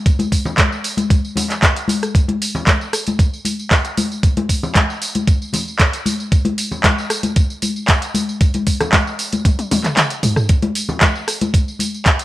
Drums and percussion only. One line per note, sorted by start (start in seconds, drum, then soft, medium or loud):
0.06 kick loud
0.06 closed hi-hat medium
0.06 tambourine soft
0.19 closed hi-hat soft
0.19 tambourine soft
0.19 high conga medium
0.32 kick medium
0.32 open hi-hat loud
0.32 tambourine medium
0.45 tambourine soft
0.45 low conga loud
0.57 kick loud
0.57 clap loud
0.57 closed hi-hat medium
0.57 tambourine soft
0.57 high conga medium
0.72 tambourine soft
0.84 open hi-hat loud
0.84 tambourine medium
0.97 closed hi-hat soft
0.97 tambourine soft
0.97 high conga loud
1.10 kick loud
1.10 closed hi-hat medium
1.10 tambourine soft
1.25 tambourine soft
1.36 open hi-hat loud
1.36 tambourine medium
1.36 high conga medium
1.36 low conga medium
1.50 clap soft
1.50 closed hi-hat soft
1.50 tambourine soft
1.63 kick loud
1.63 clap loud
1.63 closed hi-hat medium
1.63 tambourine soft
1.76 closed hi-hat medium
1.76 tambourine soft
1.88 open hi-hat medium
1.88 tambourine medium
1.88 high conga medium
2.03 cross-stick medium
2.03 closed hi-hat soft
2.03 tambourine soft
2.15 kick loud
2.15 closed hi-hat medium
2.15 tambourine soft
2.28 closed hi-hat soft
2.28 high conga medium
2.42 open hi-hat loud
2.42 tambourine medium
2.55 tambourine soft
2.55 low conga loud
2.67 kick loud
2.67 clap loud
2.67 closed hi-hat medium
2.67 tambourine soft
2.67 high conga medium
2.81 tambourine soft
2.93 cross-stick medium
2.93 open hi-hat medium
2.93 tambourine medium
3.07 closed hi-hat soft
3.07 tambourine soft
3.07 high conga medium
3.19 kick loud
3.19 closed hi-hat medium
3.19 tambourine soft
3.33 tambourine soft
3.45 open hi-hat loud
3.45 tambourine medium
3.45 high conga medium
3.59 tambourine soft
3.71 kick loud
3.71 clap loud
3.71 closed hi-hat medium
3.71 tambourine soft
3.85 closed hi-hat medium
3.85 tambourine soft
3.97 open hi-hat medium
3.97 tambourine medium
3.97 high conga loud
4.12 tambourine soft
4.23 kick loud
4.23 closed hi-hat medium
4.23 tambourine soft
4.37 closed hi-hat soft
4.37 high conga loud
4.49 kick medium
4.49 open hi-hat loud
4.49 tambourine medium
4.63 tambourine soft
4.63 low conga medium
4.75 kick loud
4.75 clap loud
4.75 closed hi-hat medium
4.75 tambourine soft
4.75 high conga medium
4.90 tambourine soft
5.02 open hi-hat medium
5.02 tambourine medium
5.15 closed hi-hat soft
5.15 tambourine soft
5.15 high conga medium
5.27 kick loud
5.27 closed hi-hat medium
5.27 tambourine soft
5.42 tambourine soft
5.53 open hi-hat loud
5.53 tambourine medium
5.53 high conga medium
5.53 low conga medium
5.68 tambourine soft
5.79 kick loud
5.79 clap loud
5.79 closed hi-hat medium
5.79 tambourine soft
5.93 closed hi-hat medium
5.93 tambourine soft
6.06 open hi-hat medium
6.06 tambourine medium
6.06 high conga medium
6.20 tambourine soft
6.32 kick loud
6.32 closed hi-hat medium
6.32 tambourine soft
6.45 closed hi-hat soft
6.45 high conga medium
6.58 open hi-hat loud
6.58 tambourine medium
6.71 tambourine soft
6.71 low conga medium
6.84 kick loud
6.84 clap loud
6.84 closed hi-hat medium
6.84 tambourine soft
6.84 high conga medium
6.98 tambourine soft
7.10 cross-stick medium
7.10 open hi-hat medium
7.10 tambourine medium
7.23 closed hi-hat medium
7.23 tambourine soft
7.23 high conga medium
7.36 kick loud
7.36 closed hi-hat medium
7.36 tambourine soft
7.50 tambourine soft
7.62 open hi-hat loud
7.62 tambourine medium
7.62 high conga medium
7.76 tambourine soft
7.88 kick loud
7.88 clap loud
7.88 closed hi-hat medium
7.88 tambourine soft
8.02 closed hi-hat medium
8.02 tambourine soft
8.14 open hi-hat medium
8.14 tambourine medium
8.14 high conga medium
8.29 tambourine soft
8.41 kick loud
8.41 closed hi-hat medium
8.41 tambourine soft
8.54 closed hi-hat soft
8.54 tambourine soft
8.54 high conga medium
8.67 kick medium
8.67 open hi-hat loud
8.67 tambourine medium
8.81 cross-stick medium
8.81 closed hi-hat soft
8.81 tambourine soft
8.81 low conga medium
8.92 kick loud
8.92 clap loud
8.92 closed hi-hat medium
8.92 tambourine soft
8.92 high conga medium
9.07 tambourine soft
9.19 open hi-hat medium
9.19 tambourine medium
9.32 closed hi-hat medium
9.32 tambourine soft
9.32 high conga medium
9.45 kick loud
9.45 closed hi-hat medium
9.45 high tom medium
9.45 tambourine soft
9.59 closed hi-hat soft
9.59 high tom medium
9.59 tambourine soft
9.71 open hi-hat loud
9.71 high tom medium
9.71 tambourine medium
9.71 high conga medium
9.71 low conga medium
9.84 clap soft
9.84 closed hi-hat soft
9.84 mid tom medium
9.84 tambourine soft
9.97 clap loud
9.97 closed hi-hat medium
9.97 mid tom medium
9.97 tambourine soft
10.10 closed hi-hat medium
10.10 tambourine soft
10.23 mid tom medium
10.23 open hi-hat medium
10.23 tambourine medium
10.23 high conga medium
10.36 cross-stick medium
10.36 mid tom medium
10.36 tambourine soft
10.49 kick loud
10.49 closed hi-hat medium
10.49 tambourine soft
10.62 closed hi-hat soft
10.62 high conga loud
10.75 open hi-hat loud
10.75 tambourine medium
10.89 tambourine soft
10.89 low conga loud
11.01 kick loud
11.01 clap loud
11.01 closed hi-hat medium
11.01 tambourine soft
11.01 high conga medium
11.15 tambourine soft
11.28 cross-stick medium
11.28 open hi-hat loud
11.28 tambourine medium
11.41 closed hi-hat medium
11.41 tambourine soft
11.41 high conga loud
11.54 kick loud
11.54 closed hi-hat medium
11.54 tambourine soft
11.68 tambourine soft
11.79 open hi-hat loud
11.79 tambourine medium
11.79 high conga medium
11.94 tambourine soft
12.06 kick loud
12.06 clap loud
12.06 closed hi-hat medium
12.06 tambourine soft
12.19 closed hi-hat medium
12.19 tambourine soft